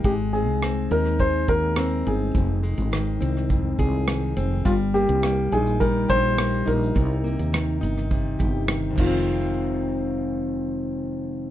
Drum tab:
CC |----------------|----------------|----------------|--------------x-|
SH |x-x-x-x-x-x-x-x-|x-xxx-x-x-x-x-x-|x-x-x-xxx-xxx-xx|x-xxx-x-x-x-x---|
SD |----r--r----r---|----r--r----r---|----r-------r---|----r--r----r---|
BD |o-------o-o-----|o-------o-o-----|o-------o-o-----|o-------o-o---o-|

CC |----------------|
SH |----------------|
SD |----------------|
BD |----------------|